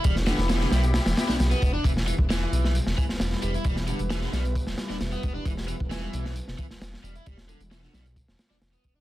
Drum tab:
HH |x-x-x-xxxxxxxxx-|x-x-x-x-x-x-x-xx|x-xxx-xxx-x-xxx-|x-x-x-x-x-x-x-xx|
SD |-oooooo-ooooo---|-o--o--o-o-ooo--|-o--ooo--oooo---|-o--o--o-o-ooo--|
BD |o-------------o-|o--o------o-----|o-------o-----o-|o--o------o-----|

HH |x-xxx-xxx-x-xxx-|
SD |-o--ooo--oooo---|
BD |o-------o-----o-|